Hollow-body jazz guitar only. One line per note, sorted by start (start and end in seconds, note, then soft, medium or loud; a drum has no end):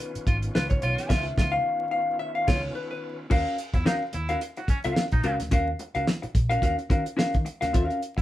0.00 0.24 B4 medium
0.55 0.69 B4 medium
0.70 0.81 C#5 medium
0.82 1.11 C#5 medium
1.09 1.51 E5 loud
1.52 1.90 F5 loud
1.91 2.19 F5 loud
2.19 2.34 E5 loud
2.35 2.48 F5 medium
2.47 2.75 C#5 medium
2.75 2.90 B4 medium
2.91 3.17 B4 medium
3.30 3.56 C#4 medium
3.30 3.56 F#4 medium
3.30 3.57 A#4 loud
3.30 3.57 F5 loud
3.74 muted hollow-body jazz guitar stroke medium
3.85 4.02 C#4 medium
3.85 4.02 F#4 medium
3.85 4.02 A#4 loud
3.85 4.02 F5 loud
4.13 muted hollow-body jazz guitar stroke soft
4.29 4.40 C#4 soft
4.29 4.39 F#4 medium
4.29 4.39 A#4 medium
4.29 4.39 F5 medium
4.42 muted hollow-body jazz guitar stroke soft
4.57 muted hollow-body jazz guitar stroke soft
4.85 5.04 C#4 medium
4.85 5.04 F#4 medium
4.85 5.04 A#4 medium
4.85 5.04 F5 medium
5.12 muted hollow-body jazz guitar stroke medium
5.24 5.40 C#4 medium
5.24 5.39 F#4 loud
5.24 5.39 A#4 medium
5.24 5.38 F5 loud
5.39 muted hollow-body jazz guitar stroke soft
5.51 5.67 C#4 medium
5.51 5.68 F#4 loud
5.51 5.68 A#4 loud
5.51 5.68 F5 loud
5.79 muted hollow-body jazz guitar stroke soft
5.95 6.06 C#4 soft
5.95 6.05 F#4 medium
5.95 6.05 A#4 medium
5.95 6.05 F5 medium
6.22 muted hollow-body jazz guitar stroke soft
6.50 6.61 C#4 medium
6.50 6.61 F#4 medium
6.50 6.62 A#4 medium
6.50 6.63 F5 medium
6.62 6.78 C#4 medium
6.62 6.78 F#4 loud
6.62 6.77 A#4 loud
6.62 6.76 F5 loud
6.78 muted hollow-body jazz guitar stroke soft
6.90 7.03 C#4 medium
6.90 7.03 F#4 medium
6.90 7.03 A#4 medium
6.90 7.04 F5 medium
7.05 muted hollow-body jazz guitar stroke soft
7.17 7.33 C#4 medium
7.17 7.34 F#4 medium
7.17 7.34 A#4 medium
7.17 7.34 F5 medium
7.45 muted hollow-body jazz guitar stroke soft
7.61 7.72 C#4 medium
7.61 7.72 F#4 medium
7.61 7.71 A#4 medium
7.61 7.71 F5 medium
7.73 7.84 C4 loud
7.73 7.85 F4 loud
7.73 7.85 A4 medium
7.73 7.86 E5 loud
7.84 7.99 C#4 loud
7.84 8.00 F#4 loud
7.84 8.00 A#4 medium
7.84 8.00 F5 loud
8.17 muted hollow-body jazz guitar stroke soft